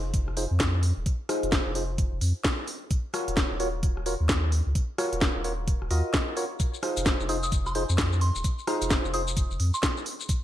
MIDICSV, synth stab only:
0, 0, Header, 1, 2, 480
1, 0, Start_track
1, 0, Tempo, 461538
1, 1103, Time_signature, 4, 2, 24, 8
1, 10854, End_track
2, 0, Start_track
2, 0, Title_t, "Synth stab"
2, 0, Program_c, 0, 62
2, 383, Note_on_c, 0, 63, 93
2, 383, Note_on_c, 0, 65, 84
2, 383, Note_on_c, 0, 68, 81
2, 383, Note_on_c, 0, 72, 101
2, 467, Note_off_c, 0, 65, 0
2, 467, Note_off_c, 0, 68, 0
2, 468, Note_off_c, 0, 63, 0
2, 468, Note_off_c, 0, 72, 0
2, 1343, Note_on_c, 0, 63, 96
2, 1343, Note_on_c, 0, 65, 87
2, 1343, Note_on_c, 0, 68, 91
2, 1343, Note_on_c, 0, 72, 104
2, 1801, Note_off_c, 0, 63, 0
2, 1801, Note_off_c, 0, 65, 0
2, 1801, Note_off_c, 0, 68, 0
2, 1801, Note_off_c, 0, 72, 0
2, 1823, Note_on_c, 0, 63, 78
2, 1823, Note_on_c, 0, 65, 70
2, 1823, Note_on_c, 0, 68, 73
2, 1823, Note_on_c, 0, 72, 89
2, 1907, Note_off_c, 0, 63, 0
2, 1907, Note_off_c, 0, 65, 0
2, 1907, Note_off_c, 0, 68, 0
2, 1907, Note_off_c, 0, 72, 0
2, 3263, Note_on_c, 0, 66, 70
2, 3263, Note_on_c, 0, 70, 70
2, 3264, Note_on_c, 0, 65, 79
2, 3264, Note_on_c, 0, 73, 86
2, 3721, Note_off_c, 0, 66, 0
2, 3721, Note_off_c, 0, 70, 0
2, 3722, Note_off_c, 0, 65, 0
2, 3722, Note_off_c, 0, 73, 0
2, 3743, Note_on_c, 0, 65, 96
2, 3743, Note_on_c, 0, 66, 84
2, 3743, Note_on_c, 0, 70, 89
2, 3743, Note_on_c, 0, 73, 109
2, 3827, Note_off_c, 0, 65, 0
2, 3828, Note_off_c, 0, 66, 0
2, 3828, Note_off_c, 0, 70, 0
2, 3828, Note_off_c, 0, 73, 0
2, 4223, Note_on_c, 0, 65, 94
2, 4223, Note_on_c, 0, 66, 87
2, 4223, Note_on_c, 0, 70, 86
2, 4223, Note_on_c, 0, 73, 101
2, 4307, Note_off_c, 0, 65, 0
2, 4307, Note_off_c, 0, 66, 0
2, 4307, Note_off_c, 0, 70, 0
2, 4307, Note_off_c, 0, 73, 0
2, 5183, Note_on_c, 0, 65, 98
2, 5183, Note_on_c, 0, 66, 89
2, 5183, Note_on_c, 0, 70, 84
2, 5183, Note_on_c, 0, 73, 106
2, 5641, Note_off_c, 0, 65, 0
2, 5641, Note_off_c, 0, 66, 0
2, 5641, Note_off_c, 0, 70, 0
2, 5641, Note_off_c, 0, 73, 0
2, 5663, Note_on_c, 0, 65, 77
2, 5663, Note_on_c, 0, 66, 69
2, 5663, Note_on_c, 0, 70, 70
2, 5663, Note_on_c, 0, 73, 82
2, 5747, Note_off_c, 0, 65, 0
2, 5747, Note_off_c, 0, 66, 0
2, 5747, Note_off_c, 0, 70, 0
2, 5747, Note_off_c, 0, 73, 0
2, 6142, Note_on_c, 0, 65, 72
2, 6142, Note_on_c, 0, 66, 66
2, 6142, Note_on_c, 0, 70, 69
2, 6142, Note_on_c, 0, 75, 80
2, 6601, Note_off_c, 0, 65, 0
2, 6601, Note_off_c, 0, 66, 0
2, 6601, Note_off_c, 0, 70, 0
2, 6601, Note_off_c, 0, 75, 0
2, 6621, Note_on_c, 0, 66, 84
2, 6622, Note_on_c, 0, 65, 93
2, 6622, Note_on_c, 0, 70, 85
2, 6622, Note_on_c, 0, 73, 106
2, 6707, Note_off_c, 0, 65, 0
2, 6707, Note_off_c, 0, 66, 0
2, 6707, Note_off_c, 0, 70, 0
2, 6707, Note_off_c, 0, 73, 0
2, 7101, Note_on_c, 0, 63, 81
2, 7101, Note_on_c, 0, 65, 71
2, 7101, Note_on_c, 0, 68, 74
2, 7101, Note_on_c, 0, 72, 84
2, 7560, Note_off_c, 0, 63, 0
2, 7560, Note_off_c, 0, 65, 0
2, 7560, Note_off_c, 0, 68, 0
2, 7560, Note_off_c, 0, 72, 0
2, 7581, Note_on_c, 0, 63, 98
2, 7582, Note_on_c, 0, 65, 92
2, 7582, Note_on_c, 0, 68, 86
2, 7582, Note_on_c, 0, 72, 108
2, 7666, Note_off_c, 0, 63, 0
2, 7667, Note_off_c, 0, 65, 0
2, 7667, Note_off_c, 0, 68, 0
2, 7667, Note_off_c, 0, 72, 0
2, 8061, Note_on_c, 0, 63, 94
2, 8061, Note_on_c, 0, 65, 85
2, 8061, Note_on_c, 0, 68, 86
2, 8062, Note_on_c, 0, 72, 105
2, 8146, Note_off_c, 0, 63, 0
2, 8146, Note_off_c, 0, 65, 0
2, 8147, Note_off_c, 0, 68, 0
2, 8147, Note_off_c, 0, 72, 0
2, 9022, Note_on_c, 0, 63, 97
2, 9022, Note_on_c, 0, 65, 86
2, 9022, Note_on_c, 0, 68, 85
2, 9022, Note_on_c, 0, 72, 102
2, 9481, Note_off_c, 0, 63, 0
2, 9481, Note_off_c, 0, 65, 0
2, 9481, Note_off_c, 0, 68, 0
2, 9481, Note_off_c, 0, 72, 0
2, 9501, Note_on_c, 0, 63, 76
2, 9501, Note_on_c, 0, 65, 71
2, 9501, Note_on_c, 0, 68, 72
2, 9501, Note_on_c, 0, 72, 86
2, 9586, Note_off_c, 0, 63, 0
2, 9587, Note_off_c, 0, 65, 0
2, 9587, Note_off_c, 0, 68, 0
2, 9587, Note_off_c, 0, 72, 0
2, 10854, End_track
0, 0, End_of_file